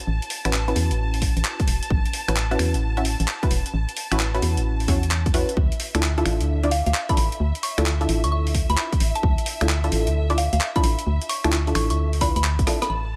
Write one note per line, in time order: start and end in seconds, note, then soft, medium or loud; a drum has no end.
0.00 5.58 A5 medium
0.07 0.20 A1 loud
0.22 closed hi-hat soft
0.30 open hi-hat loud
0.45 0.74 A1 medium
0.45 0.54 C#4 medium
0.45 0.54 E4 medium
0.45 0.54 F#4 medium
0.45 0.54 B4 loud
0.45 finger snap medium
0.45 closed hi-hat medium
0.53 clap loud
0.68 2.25 C#4 medium
0.68 2.25 E4 medium
0.68 2.25 F#4 medium
0.68 2.25 B4 medium
0.68 closed hi-hat soft
0.76 0.92 E2 medium
0.76 open hi-hat loud
0.91 1.32 A1 medium
0.91 closed hi-hat medium
1.14 open hi-hat medium
1.22 kick medium
1.22 open hi-hat loud
1.37 1.43 A1 loud
1.37 closed hi-hat medium
1.45 clap loud
1.60 kick loud
1.60 closed hi-hat medium
1.67 1.80 E1 medium
1.67 open hi-hat loud
1.83 closed hi-hat medium
1.90 2.03 A1 loud
1.90 kick loud
2.06 closed hi-hat soft
2.13 open hi-hat loud
2.28 2.57 A1 loud
2.28 2.34 C#4 medium
2.28 2.34 E4 medium
2.28 2.34 F#4 medium
2.28 2.34 B4 medium
2.28 finger snap medium
2.28 closed hi-hat medium
2.36 clap loud
2.51 2.93 C#4 medium
2.51 2.93 E4 medium
2.51 2.93 F#4 medium
2.51 2.93 B4 medium
2.51 closed hi-hat soft
2.59 2.76 E2 medium
2.59 finger snap medium
2.59 open hi-hat loud
2.74 3.16 A1 loud
2.74 closed hi-hat medium
2.97 3.02 C#4 medium
2.97 3.02 E4 medium
2.97 3.02 F#4 medium
2.97 3.02 E5 loud
2.97 closed hi-hat soft
3.05 open hi-hat loud
3.20 3.26 A1 loud
3.20 closed hi-hat medium
3.28 clap loud
3.43 3.52 C#4 medium
3.43 3.52 E4 medium
3.43 3.52 F#4 medium
3.43 3.52 B4 loud
3.43 kick loud
3.43 closed hi-hat medium
3.51 3.63 E1 medium
3.51 open hi-hat loud
3.66 closed hi-hat medium
3.74 3.86 A1 loud
3.89 closed hi-hat soft
3.97 open hi-hat loud
4.11 4.40 A1 loud
4.11 4.21 C#4 medium
4.11 4.21 E4 medium
4.11 4.21 F#4 medium
4.11 4.21 B4 loud
4.11 finger snap medium
4.11 closed hi-hat medium
4.19 clap loud
4.34 4.87 C#4 medium
4.34 4.87 E4 medium
4.34 4.87 F#4 medium
4.34 4.87 B4 medium
4.34 closed hi-hat soft
4.42 4.59 E2 medium
4.42 open hi-hat loud
4.57 4.88 A1 medium
4.57 closed hi-hat medium
4.80 open hi-hat medium
4.88 5.45 E2 loud
4.88 4.98 C#4 medium
4.88 4.98 E4 medium
4.88 4.98 F#4 medium
4.88 4.98 C#5 loud
4.88 kick medium
4.88 open hi-hat loud
5.03 closed hi-hat medium
5.11 clap loud
5.26 kick loud
5.26 closed hi-hat soft
5.34 5.50 C#4 loud
5.34 5.50 E4 medium
5.34 5.50 F#4 medium
5.34 5.50 B4 loud
5.34 open hi-hat loud
5.49 closed hi-hat medium
5.57 5.69 D2 loud
5.57 12.91 E5 medium
5.57 kick loud
5.72 closed hi-hat medium
5.80 open hi-hat loud
5.95 6.23 D2 medium
5.95 6.00 D4 medium
5.95 6.00 E4 medium
5.95 6.00 F4 medium
5.95 6.00 A4 medium
5.95 finger snap medium
5.95 closed hi-hat medium
6.03 clap loud
6.18 6.60 D4 medium
6.18 6.60 E4 medium
6.18 6.60 F4 medium
6.18 6.60 A4 loud
6.18 closed hi-hat soft
6.26 6.42 A1 medium
6.26 finger snap medium
6.26 open hi-hat medium
6.41 6.82 D2 loud
6.41 closed hi-hat medium
6.63 6.69 D4 medium
6.63 6.69 E4 medium
6.63 6.69 F4 medium
6.63 6.69 D5 loud
6.63 closed hi-hat soft
6.71 6.81 F5 medium
6.71 open hi-hat loud
6.86 6.93 D2 loud
6.86 6.91 F5 medium
6.86 closed hi-hat medium
6.94 clap loud
7.09 7.19 D4 medium
7.09 7.19 E4 medium
7.09 7.19 F4 medium
7.09 7.19 A4 medium
7.09 7.14 B5 medium
7.09 kick loud
7.09 closed hi-hat medium
7.17 7.30 A1 medium
7.17 7.27 B5 medium
7.17 open hi-hat loud
7.32 closed hi-hat medium
7.40 7.52 D2 loud
7.55 closed hi-hat medium
7.63 8.01 C#6 medium
7.63 open hi-hat loud
7.78 8.07 D2 loud
7.78 7.87 D4 medium
7.78 7.87 E4 medium
7.78 7.87 F4 medium
7.78 7.87 A4 loud
7.78 finger snap medium
7.78 closed hi-hat medium
7.86 clap loud
8.01 9.58 D4 medium
8.01 9.58 E4 medium
8.01 9.58 F4 medium
8.01 9.58 A4 medium
8.01 closed hi-hat soft
8.09 8.25 A1 medium
8.09 open hi-hat loud
8.24 8.65 D2 medium
8.24 8.29 C#6 medium
8.24 closed hi-hat medium
8.32 8.41 C#6 medium
8.47 open hi-hat medium
8.55 kick medium
8.55 open hi-hat loud
8.70 8.76 D2 loud
8.70 8.80 B5 medium
8.70 closed hi-hat medium
8.77 clap loud
8.92 kick loud
8.92 closed hi-hat medium
9.00 9.13 A1 medium
9.00 open hi-hat loud
9.15 9.61 A5 medium
9.15 closed hi-hat medium
9.23 9.36 D2 loud
9.23 kick loud
9.38 closed hi-hat medium
9.46 open hi-hat loud
9.61 9.90 D2 loud
9.61 9.67 D4 medium
9.61 9.67 E4 medium
9.61 9.67 F4 medium
9.61 9.67 A4 medium
9.61 finger snap medium
9.61 closed hi-hat medium
9.69 clap loud
9.84 10.26 D4 medium
9.84 10.26 E4 medium
9.84 10.26 F4 medium
9.84 10.26 A4 medium
9.84 closed hi-hat soft
9.92 10.09 A1 medium
9.92 open hi-hat loud
10.07 10.49 D2 loud
10.07 closed hi-hat medium
10.30 10.35 D4 medium
10.30 10.35 E4 medium
10.30 10.35 F4 medium
10.30 10.35 D5 loud
10.30 closed hi-hat soft
10.38 10.47 F5 medium
10.38 open hi-hat loud
10.53 10.59 D2 loud
10.53 10.58 F5 medium
10.53 closed hi-hat medium
10.61 clap loud
10.76 10.85 D4 medium
10.76 10.85 E4 medium
10.76 10.85 F4 medium
10.76 10.85 A4 loud
10.76 10.81 B5 medium
10.76 kick loud
10.76 closed hi-hat medium
10.84 10.96 A1 medium
10.84 10.93 B5 medium
10.84 open hi-hat loud
10.99 closed hi-hat medium
11.07 11.19 D2 loud
11.22 closed hi-hat medium
11.29 11.67 C#6 medium
11.29 open hi-hat loud
11.44 11.73 D2 loud
11.44 11.54 D4 medium
11.44 11.54 E4 medium
11.44 11.54 F4 medium
11.44 11.54 A4 loud
11.44 finger snap medium
11.44 closed hi-hat medium
11.52 clap loud
11.67 12.19 D4 medium
11.67 12.19 E4 medium
11.67 12.19 F4 medium
11.67 12.19 A4 medium
11.67 closed hi-hat soft
11.75 11.92 A1 medium
11.75 11.85 C#6 medium
11.75 finger snap medium
11.75 open hi-hat loud
11.90 12.32 D2 loud
11.90 11.95 C#6 medium
11.90 closed hi-hat medium
12.13 open hi-hat medium
12.21 12.31 D4 medium
12.21 12.31 E4 medium
12.21 12.31 F4 medium
12.21 12.31 B4 loud
12.21 12.31 B5 medium
12.21 kick medium
12.21 open hi-hat loud
12.36 12.60 D2 loud
12.36 12.41 B5 medium
12.36 closed hi-hat medium
12.44 clap loud
12.59 12.65 A1 loud
12.59 kick loud
12.59 closed hi-hat medium
12.67 12.83 D4 loud
12.67 12.83 E4 medium
12.67 12.83 F4 medium
12.67 12.83 A4 loud
12.67 cross-stick medium
12.67 open hi-hat loud
12.82 12.87 B5 medium
12.82 cross-stick medium
12.82 closed hi-hat medium
12.90 13.16 A1 medium
12.90 13.16 A5 medium
12.90 12.99 B5 medium